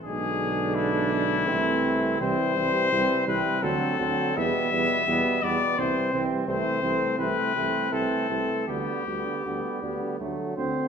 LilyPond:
<<
  \new Staff \with { instrumentName = "Trumpet" } { \time 3/4 \key a \minor \tempo 4 = 83 gis'4 e'2 | \key g \major c''4. b'8 a'4 | e''4. d''8 c''8 r8 | c''4 b'4 a'4 |
g'2 r4 | }
  \new Staff \with { instrumentName = "Flugelhorn" } { \time 3/4 \key a \minor d'2 c'4 | \key g \major c'8 c'8 c'8 c'8 c'8 c'8 | b8 b8 b8 b8 c'8 c'8 | c'8 c'8 c'8 c'8 c'8 c'8 |
b8 b8 b8 b8 a8 c''8 | }
  \new Staff \with { instrumentName = "French horn" } { \clef bass \time 3/4 \key a \minor gis2 a4 | \key g \major g8 g8 g8 g8 fis8 fis8 | g8 g8 g8 g8 g8 g8 | a8 a8 a8 a8 a8 a8 |
g8 g8 g8 g8 fis8 c'8 | }
  \new Staff \with { instrumentName = "Euphonium" } { \clef bass \time 3/4 \key a \minor d2 e4 | \key g \major e8 e8 e8 e8 d8 d8 | b,8 b,8 b,8 b,8 e8 e8 | e8 e8 e8 e8 e8 e8 |
d8 d8 d8 d8 d8 d8 | }
  \new Staff \with { instrumentName = "Tuba" } { \clef bass \time 3/4 \key a \minor b,,2 c,4 | \key g \major c,8 c,8 c,8 c,8 d,8 d,8 | e,8 e,8 e,8 e,8 c,8 c,8 | c,8 c,8 c,8 c,8 c,8 c,8 |
d,8 d,8 d,8 d,8 d,8 d,8 | }
>>